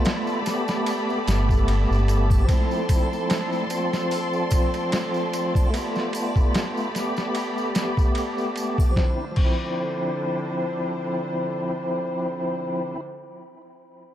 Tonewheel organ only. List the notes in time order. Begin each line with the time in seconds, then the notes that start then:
Already playing: A3 B3 F4
0.43 A3
0.47 B3 G4
2.45 F3
2.49 C4 E4
3.67 F3
3.71 C4 F4
5.70 A3 B3
5.78 F4
6.91 A3
6.95 B3
6.99 G4
8.91 F3
8.97 C4
9.04 E4
9.31 F3
9.38 C4
9.44 E4